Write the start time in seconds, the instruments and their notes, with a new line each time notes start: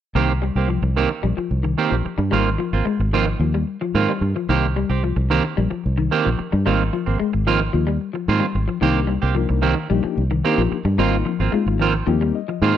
0.15 fingered electric bass C2, clean electric guitar D#3 A#3 C4 G4
0.42 clean electric guitar G3, muted clean electric guitar stroke
0.55 fingered electric bass C2, clean electric guitar A#3 C4 G4
0.68 clean electric guitar F3, muted clean electric guitar stroke
0.82 fingered electric bass C2, muted clean electric guitar stroke
0.97 clean electric guitar D#3 A#3 C4 G4
1.11 muted clean electric guitar stroke
1.23 fingered electric bass A#1, clean electric guitar G3
1.37 clean electric guitar F3, muted clean electric guitar stroke
1.51 fingered electric bass C2
1.63 clean electric guitar D#3, muted clean electric guitar stroke
1.78 clean electric guitar D#3 A#3 C4 G4
1.90 fingered electric bass A#1, clean electric guitar F3
2.05 muted clean electric guitar stroke, muted fingered electric bass stroke
2.18 fingered electric bass G2, clean electric guitar G3, muted clean electric guitar stroke
2.31 fingered electric bass G#1, clean electric guitar D#3 G3 A#3 C4 F4
2.58 clean electric guitar F3, muted clean electric guitar stroke
2.73 fingered electric bass G#1, clean electric guitar A#3 C4 F4
2.85 clean electric guitar G#3, muted clean electric guitar stroke
3.00 fingered electric bass G#1, muted clean electric guitar stroke
3.13 clean electric guitar D#3 F3 A#3 C4 F4
3.27 muted clean electric guitar stroke
3.39 fingered electric bass D#2, clean electric guitar F3
3.54 clean electric guitar G3, muted clean electric guitar stroke
3.81 clean electric guitar F3, muted clean electric guitar stroke
3.94 fingered electric bass G#2, clean electric guitar D#3 A#3 C4 F4
4.09 clean electric guitar G3
4.21 fingered electric bass G2, muted clean electric guitar stroke
4.36 clean electric guitar F3, muted clean electric guitar stroke
4.49 fingered electric bass C2, clean electric guitar D#3 A#3 C4 G4
4.76 clean electric guitar G3, muted clean electric guitar stroke
4.90 fingered electric bass C2, clean electric guitar C4 G4, muted clean electric guitar stroke
5.03 clean electric guitar F3, muted clean electric guitar stroke
5.16 fingered electric bass C2, muted clean electric guitar stroke
5.30 clean electric guitar D#3 A#3 C4 G4
5.44 muted clean electric guitar stroke
5.57 fingered electric bass A#1, clean electric guitar G3
5.70 clean electric guitar F3, muted clean electric guitar stroke
5.86 fingered electric bass C2
5.97 clean electric guitar D#3, muted clean electric guitar stroke
6.11 clean electric guitar D#3 A#3 C4 G4
6.25 fingered electric bass A#1, clean electric guitar F3
6.39 muted clean electric guitar stroke, muted fingered electric bass stroke
6.52 fingered electric bass G2, clean electric guitar G3, muted clean electric guitar stroke
6.66 fingered electric bass G#1, clean electric guitar D#3 G3 A#3 C4 F4
6.93 clean electric guitar F3, muted clean electric guitar stroke
7.06 fingered electric bass G#1, clean electric guitar A#3 C4
7.19 clean electric guitar G#3, muted clean electric guitar stroke
7.33 fingered electric bass G#1, muted clean electric guitar stroke
7.47 clean electric guitar D#3 F3 A#3 C4 F4
7.61 muted clean electric guitar stroke
7.73 fingered electric bass D#2, clean electric guitar F3
7.87 clean electric guitar G3, muted clean electric guitar stroke
8.13 clean electric guitar F3, muted clean electric guitar stroke
8.28 fingered electric bass G#2, clean electric guitar D#3 A#3 C4 F4
8.40 clean electric guitar G3
8.55 fingered electric bass G#1, muted clean electric guitar stroke
8.68 clean electric guitar F3, muted clean electric guitar stroke
8.81 fingered electric bass C2, clean electric guitar D#3 A#3 C4 G4, reed electric piano A#3 D4 D#4 G4
9.07 clean electric guitar G3, muted clean electric guitar stroke
9.22 fingered electric bass C2, clean electric guitar A#3 C4 G4
9.35 clean electric guitar F3, reed electric piano A#3 D4 D#4 A#4, muted clean electric guitar stroke
9.49 fingered electric bass C2, muted clean electric guitar stroke
9.62 clean electric guitar D#3 A#3 C4 G4
9.76 muted clean electric guitar stroke
9.90 fingered electric bass A#1, clean electric guitar G3, reed electric piano A#3 D4 D#4 G4
10.03 clean electric guitar F3, muted clean electric guitar stroke, muted fingered electric bass stroke
10.17 fingered electric bass C2
10.31 clean electric guitar D#3, muted clean electric guitar stroke
10.45 clean electric guitar D#3 A#3 C4 G4, reed electric piano A#3 D4 D#4 G4
10.58 fingered electric bass A#1, clean electric guitar F3
10.72 muted fingered electric bass stroke, muted clean electric guitar stroke
10.85 fingered electric bass G2, clean electric guitar G3, muted clean electric guitar stroke
10.98 fingered electric bass G#1, clean electric guitar D#3 G3 A#3 C4 F4, reed electric piano A#3 C4 D#4 F4
11.25 clean electric guitar F3, muted clean electric guitar stroke
11.40 fingered electric bass G#1, clean electric guitar A#3 C4 F4
11.52 clean electric guitar G#3, reed electric piano A#3 C4 D#4 F4, muted clean electric guitar stroke
11.66 fingered electric bass G#1, muted clean electric guitar stroke
11.79 clean electric guitar D#3 F3 A#3 C4 F4
11.95 muted clean electric guitar stroke
12.07 fingered electric bass D#2, clean electric guitar F3, reed electric piano A#3 C4 D#4 G4
12.21 clean electric guitar G3, muted clean electric guitar stroke
12.35 reed electric piano D#5
12.48 clean electric guitar F3, muted clean electric guitar stroke
12.61 fingered electric bass G#2, clean electric guitar D#3 A#3 C4 F4, reed electric piano A#3 C4 D#4 G#4 F5